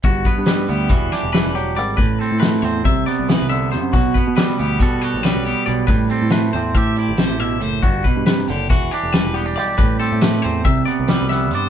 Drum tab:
HH |xxxxxxxxx|xxxxxxxxx|xxxxxxxxx|xxxxxxxxx|
SD |--o--oo--|--o---o--|--o---o--|--o---o--|
BD |oo--o----|o---o----|oo--o----|o---o----|

HH |xxxxxxxxx|xxxxxxxxx|
SD |--o---o--|--o---oo-|
BD |oo--o----|o---o----|